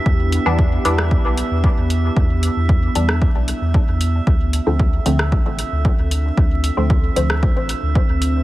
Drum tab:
HH |--x---x---x---x-|--x---x---x---x-|--x---x---x---x-|--x---x---x---x-|
SD |-------r--------|-------r--------|-------r--------|-------r--------|
BD |o---o---o---o---|o---o---o---o---|o---o---o---o---|o---o---o---o---|